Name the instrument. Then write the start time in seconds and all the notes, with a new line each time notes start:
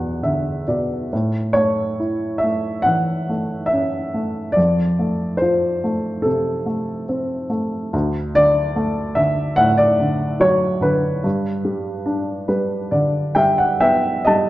upright piano
Already playing: E2 B2 F#5 G#5
0.23 D3 E5
0.68 B2 D5
1.13 A2
1.53 A3 C#5
2.00 E4
2.38 E5
2.44 A3
2.82 E3 F#5
3.29 A3
3.66 E5
3.72 C#4
4.14 A3
4.52 D5
4.57 F2
4.99 A3
5.37 C5
5.42 F4
5.84 A3
6.22 C3 A4
6.66 A3
7.09 C4
7.50 A3
7.93 D2
8.35 D3 D5
8.76 A3
9.15 D3 E5
9.56 A2 F#5
9.78 D5
9.99 D3
10.40 F#3 C#5
10.81 D3 B4
11.24 G2
11.65 G3
12.06 D4
12.48 G3 B4
12.91 D3 D5
13.35 G3 E5 G5
13.58 F#5
13.80 B3 E5 G5
14.25 G3 D#5 A5